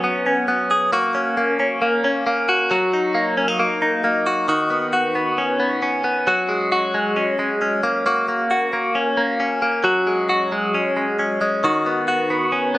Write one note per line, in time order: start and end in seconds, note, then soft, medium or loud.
0.00 2.65 F#3 medium
0.00 0.47 B3 medium
0.00 0.26 C#4 medium
0.00 0.70 G#4 medium
0.26 0.97 C#4 medium
0.48 0.92 B3 medium
0.71 0.93 G#4 medium
0.93 1.37 A#3 medium
0.93 2.48 F#4 medium
1.15 1.58 C#4 medium
1.37 1.81 A#3 medium
1.60 2.03 C#4 medium
1.82 2.26 A#3 medium
2.04 2.75 C#4 medium
2.27 2.75 A#3 medium
2.49 2.71 F#4 medium
2.71 4.48 F#3 medium
2.71 4.26 F#4 medium
2.93 3.37 D#4 medium
3.15 3.58 A#3 medium
3.37 3.48 C#4 medium
3.48 3.81 D#4 medium
3.59 4.03 A#3 medium
3.82 4.53 D#4 medium
4.04 4.53 A#3 medium
4.26 4.48 F#4 medium
4.48 6.27 D#3 medium
4.48 4.93 F#4 medium
4.70 5.14 B3 medium
4.93 6.27 F#4 medium
5.15 5.58 B3 medium
5.38 5.82 C#4 medium
5.60 6.03 B3 medium
5.82 7.16 C#4 medium
6.04 6.31 B3 medium
6.27 9.77 F#3 medium
6.27 6.72 F#4 medium
6.49 6.93 G#3 medium
6.72 8.06 F#4 medium
6.94 7.38 G#3 medium
7.16 7.61 C#4 medium
7.39 7.83 G#3 medium
7.61 8.95 C#4 medium
7.83 8.05 A#3 medium
8.06 8.27 A#3 medium
8.06 8.50 F#4 medium
8.28 8.72 A#3 medium
8.51 9.84 F#4 medium
8.73 9.16 A#3 medium
8.95 9.39 C#4 medium
9.17 9.61 A#3 medium
9.40 10.74 C#4 medium
9.62 9.89 A#3 medium
9.84 11.63 F#3 medium
9.84 10.29 F#4 medium
10.07 10.51 G#3 medium
10.29 11.64 F#4 medium
10.52 10.95 G#3 medium
10.74 11.19 C#4 medium
10.97 11.40 G#3 medium
11.19 11.89 C#4 medium
11.41 11.68 G#3 medium
11.64 12.78 D#3 medium
11.64 12.08 F#4 medium
11.86 12.29 B3 soft
12.08 12.78 F#4 medium
12.30 12.74 B3 medium
12.52 12.78 C#4 medium
12.75 12.78 B3 medium